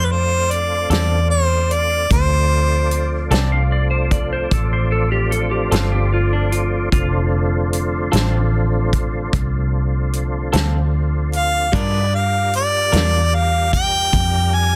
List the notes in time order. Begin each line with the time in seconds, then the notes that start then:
Already playing: F2 A3 C4 D4 F4
0.05 B4
0.12 C5
0.51 D5, closed hi-hat
0.90 E2 D3 C4 F4 A4 D5, snare, closed hi-hat
1.31 C5
1.71 D5, closed hi-hat
2.10 D2 F3 A3 C4 D4 C5, kick, closed hi-hat
2.91 closed hi-hat
3.31 C2 D3 C4 F4 A4 D5, snare, closed hi-hat
3.52 F5
3.72 D5
3.91 C5
4.11 D5, kick, closed hi-hat
4.33 C5
4.51 A1 A4, kick, closed hi-hat
4.73 C5
4.92 A4
5.12 G4
5.31 A4, closed hi-hat
5.51 G4
5.72 G1 D3 C4 F4 A4, snare, closed hi-hat
5.92 G4
6.14 F4
6.33 D4
6.52 F4, closed hi-hat
6.92 F1 D3 F3 A3 C4 F4, kick, closed hi-hat
7.73 closed hi-hat
8.12 A1 D3 C4 F4 A4, snare, closed hi-hat
8.93 kick, closed hi-hat
9.33 C2, kick, closed hi-hat
10.13 closed hi-hat
10.53 D2 D3 C4 F4 A4, snare, closed hi-hat
11.33 F5, closed hi-hat
11.72 G2 G3 D4 D#4 F4 F#4 G#4 A#4 B4 D5, kick, closed hi-hat
12.13 G3 D4 F4 A#4 F5
12.53 D5, closed hi-hat
12.92 E2 G3 D4 F4 A#4, snare, closed hi-hat
13.35 F5
13.73 G5, kick, closed hi-hat
14.13 F2, kick, closed hi-hat
14.54 G#5